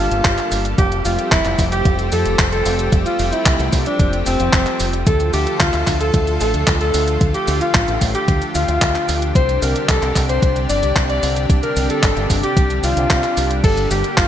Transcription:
Already playing: D3 G3 A#3 A4
0.00 F4
0.11 G1, closed hi-hat, cabasa
0.25 G1, kick, clap, closed hi-hat, cabasa
0.38 clap, closed hi-hat
0.51 G1, open hi-hat, cabasa
0.65 closed hi-hat, cabasa
0.78 F1 F3 A3 C4 G4, kick, closed hi-hat, cabasa
0.92 closed hi-hat, cabasa
1.05 F1 F4, open hi-hat, cabasa
1.19 closed hi-hat, cabasa
1.32 F1 E4, kick, clap, closed hi-hat, cabasa
1.45 F1, clap, closed hi-hat, cabasa
1.59 F1, kick, open hi-hat, cabasa
1.72 G4, closed hi-hat, cabasa
1.85 F1, kick, closed hi-hat, cabasa
1.99 closed hi-hat, cabasa
2.12 F2 A4, open hi-hat, cabasa
2.26 F1, closed hi-hat, cabasa
2.39 F1, kick, clap, closed hi-hat, cabasa
2.52 A4, closed hi-hat
2.66 F1, open hi-hat, cabasa
2.79 closed hi-hat, cabasa
2.92 F1, kick, closed hi-hat, cabasa
3.06 F4, closed hi-hat, cabasa
3.19 F1, open hi-hat, cabasa
3.33 E4, closed hi-hat, cabasa
3.46 C2, kick, clap, closed hi-hat, cabasa
3.59 C2, closed hi-hat, cabasa
3.73 C2, kick, open hi-hat, cabasa
3.86 D4, closed hi-hat, cabasa
4.00 F1, kick, closed hi-hat, cabasa
4.13 closed hi-hat, cabasa
4.26 F1 C4, open hi-hat, cabasa
4.40 F1, closed hi-hat, cabasa
4.53 F1, kick, clap, closed hi-hat, cabasa
4.67 clap, closed hi-hat
4.80 F1, open hi-hat, cabasa
4.93 closed hi-hat, cabasa
5.06 D2 D3 A3 F4 A4, kick, closed hi-hat, cabasa
5.20 closed hi-hat, cabasa
5.33 D2 G4, open hi-hat, cabasa
5.47 closed hi-hat, cabasa
5.60 D2 F4, kick, clap, closed hi-hat, cabasa
5.74 D2, clap, closed hi-hat, cabasa
5.87 D2, kick, clap, open hi-hat, cabasa
6.01 A4, closed hi-hat, cabasa
6.14 D2, kick, closed hi-hat, cabasa
6.27 closed hi-hat, cabasa
6.41 A1 A4, open hi-hat, cabasa
6.54 D2, closed hi-hat, cabasa
6.67 D2, kick, clap, closed hi-hat, cabasa
6.81 A4, closed hi-hat
6.94 D2, open hi-hat, cabasa
7.08 closed hi-hat, cabasa
7.21 D2 G4, kick, closed hi-hat, cabasa
7.34 G4, closed hi-hat, cabasa
7.48 D2, open hi-hat, cabasa
7.61 F4, closed hi-hat, cabasa
7.75 A1, kick, clap, closed hi-hat, cabasa
7.88 A1, closed hi-hat, cabasa
8.01 A1, kick, open hi-hat, cabasa
8.15 G4, closed hi-hat, cabasa
8.28 D2, kick, closed hi-hat, cabasa
8.42 closed hi-hat, cabasa
8.55 D2 F4, open hi-hat, cabasa
8.68 D2, closed hi-hat, cabasa
8.82 D2, kick, clap, closed hi-hat, cabasa
8.95 clap, closed hi-hat
9.09 D2, open hi-hat, cabasa
9.22 closed hi-hat, cabasa
9.35 C2 C3 G3 D4 C5, kick, closed hi-hat, cabasa
9.49 closed hi-hat, cabasa
9.62 C2 A#4, open hi-hat, cabasa
9.76 closed hi-hat, cabasa
9.89 C2 A4, kick, clap, closed hi-hat, cabasa
10.02 C2, clap, closed hi-hat, cabasa
10.16 C2, kick, clap, open hi-hat, cabasa
10.29 C5, closed hi-hat, cabasa
10.42 C2, kick, closed hi-hat, cabasa
10.56 closed hi-hat, cabasa
10.69 G1 D5, open hi-hat, cabasa
10.83 C2, closed hi-hat, cabasa
10.96 C2, kick, clap, closed hi-hat, cabasa
11.10 D5, closed hi-hat
11.23 C2, open hi-hat, cabasa
11.36 closed hi-hat, cabasa
11.50 C2, kick, closed hi-hat, cabasa
11.63 A#4, closed hi-hat, cabasa
11.76 C2, open hi-hat, cabasa
11.90 A4, closed hi-hat, cabasa
12.03 G1, kick, clap, closed hi-hat, cabasa
12.17 G1, closed hi-hat, cabasa
12.30 G1, kick, open hi-hat, cabasa
12.43 G4, closed hi-hat, cabasa
12.57 C2, kick, closed hi-hat, cabasa
12.70 closed hi-hat, cabasa
12.83 C2 F4, open hi-hat, cabasa
12.97 C2, closed hi-hat, cabasa
13.10 C2, kick, clap, closed hi-hat, cabasa
13.24 clap, closed hi-hat, cabasa
13.37 C2, open hi-hat, cabasa
13.51 closed hi-hat, cabasa
13.64 G1 A#3 A4, kick, closed hi-hat, crash, cabasa
13.77 closed hi-hat, cabasa
13.91 G1 G4, open hi-hat, cabasa
14.04 closed hi-hat, cabasa
14.17 G1 F4, kick, clap, closed hi-hat, cabasa

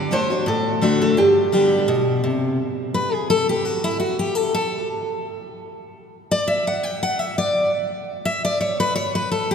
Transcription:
0.11 D3 A3 D4 F#4 C5
0.30 D4 F#4
0.46 A2 A4
0.81 D3 A3 D4 F#4
1.02 A4
1.17 G2 G4
1.52 D3 G3 B3 G4
1.88 B2
2.24 C3
2.94 B4
3.13 G#4
3.30 A4
3.49 G4
3.65 F#4
3.84 E4
4.00 F#4
4.19 G4
4.35 A4
4.54 A4
6.31 D5
6.48 E5
6.67 F#5
6.83 G5
7.03 F#5
7.19 E5
7.38 D5
8.25 E5
8.45 D5
8.61 C#5
8.80 B4
8.95 C#5
9.15 B4
9.31 A4
9.51 G4

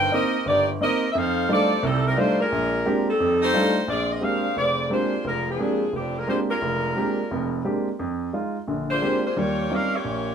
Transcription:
Already playing: D#4 A#4 C5 G5
0.11 A#3 C4 D#4 G4 A#4 D#5
0.46 G1 A#3 D#4 G4 D5
0.81 A#3 C4 D#4 G4 A#4 D#5
1.12 F2 E5
1.18 D#4 A4 C5 F5
1.49 G3 A3 C4 D4 D#4 F4 G4 A4 D5
1.83 C2 C3 G3 C4 D#4 A4
2.07 G3 C4 D#4 A#4
2.17 G3 A3 D4 D#4 F4 G4 C5
2.40 G#3 D4 F4 A#4
2.52 A#1
2.86 G#3 A#3 C4 D4 G4
3.10 G3 C4 D#4 A4
3.20 F2
3.42 A3 D#4 G4 C5
3.54 G3 A3 D4 D#4 F4
3.88 A#1 C4 F4 G#4 D5
4.11 C4 F4 G#4 D#5
4.21 G#3 A#3 C4 D4 G4 G#4 C5 F5
4.57 F1 C4 F4 G#4 D5
4.90 G#3 A#3 C4 D4 F4 G4 C5
5.25 F1 G#3 D4 F4 A#4
5.50 F3 C4 D4 G#4
5.59 G#3 A#3 C4 D4 G4
5.93 F1 F3 C4 D4 G4
6.18 G#3 D4 F4 A#4
6.28 G#3 A#3 C4 D4 F4 G4 C5
6.50 G#3 D4 F4 A#4
6.62 F1
6.96 G#3 A#3 C4 D4 G4
7.31 F1 F2
7.65 G#3 A#3 C4 D4 G4
7.99 F2
8.33 G#3 D#4 F4
8.68 A#1 D3
8.91 G#3 D4 F4 C5
9.02 G#3 A#3 C4 D4 G4
9.26 G#3 D4 F4 C5
9.37 D#2 G3 A#3 F4 G4 C#5
9.70 G3 C4 C#4 D#4 F4
9.74 C#4 G4 A#4 F5
9.96 A#3 F4 G4 C#5
10.04 A#1 A#2

